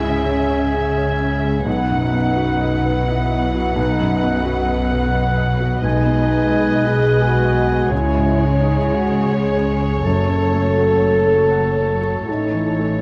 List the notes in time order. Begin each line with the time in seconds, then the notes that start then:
Already playing: C#2 G#2 C#3 C#4 E4 G#4 E5 G#5
0.03 G#3
0.25 C#4 G#4 G#5
0.50 C#5
0.74 G#4
0.98 C#5
1.20 C#4
1.44 G#3
1.66 B1 B2 F#3 D#4 B4 F#5
1.91 F#2
2.13 B3
2.36 F#4
2.61 D#5
2.86 B4
3.08 E4 F#5
3.31 D#5
3.54 F#4
3.76 B1 D#4 B4 F#5
4.01 F#2
4.23 B3
4.45 B3 F#4 B4 F#5
4.68 D#5
4.91 B4
5.15 F#5
5.38 D#5
5.60 F#4
5.83 B1 B2 G#3 D#4 B4 D#5 G#5
6.06 B2
6.29 G#3
6.52 G#4
6.76 D#5
6.87 G#4
7.00 G#4
7.22 F#4 G#5
7.45 D#5
7.67 G#4
7.91 C#2 C#3 E4 G#4 C#5 G#5
8.15 G#2
8.38 G#3
8.45 C#4
8.61 D#4 G#4
8.78 E4
8.85 C#5
8.96 F#4
9.09 G#4
9.33 G#4 C#5 G#5
9.57 C#5
9.82 G#4
10.04 F#1 F#2 F#3 A4 C#5 A5
10.28 C#3
10.54 A3
10.77 F#4
11.00 C#5
11.27 A4
11.51 F#5
11.76 C#5
12.02 F#4
12.28 A1 A2 E3 D#4 C#5 A5
12.54 E3
12.79 A3